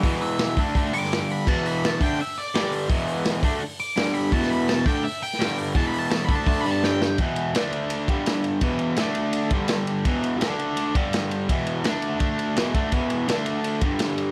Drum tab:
CC |----------------|x---------------|----------------|----------------|
RD |----------------|----------------|----------------|----------------|
HH |o-o-o-o-o-o-o-o-|--o-o-o-o-o-o-o-|o-o-o-o-o-o-o-o-|o-o-o-o-o-o-o-o-|
SD |----o------oo---|----o-------o---|----o-------o---|-o--o------oo---|
BD |o-----o-o-------|o-----o---------|o-----o---------|o-----o---------|

CC |----------------|----------------|----------------|----------------|
RD |----------------|x-x-x-x-x-x-x-x-|x-x-x-x-x-x-x-x-|x-x-x-x-x-x-x-x-|
HH |o-o-o-o-o-o-----|----------------|----------------|----------------|
SD |----o-------o-o-|----o-------o---|----o-------o---|----o-------o---|
BD |o-----o-o-------|o---------o-----|o---------o-----|o---------o-----|

CC |----------------|----------------|
RD |x-x-x-x-x-x-x-x-|x-x-x-x-x-x-x-x-|
HH |----------------|----------------|
SD |----o-------o---|----o-------o---|
BD |o-------o-----o-|o---------o-----|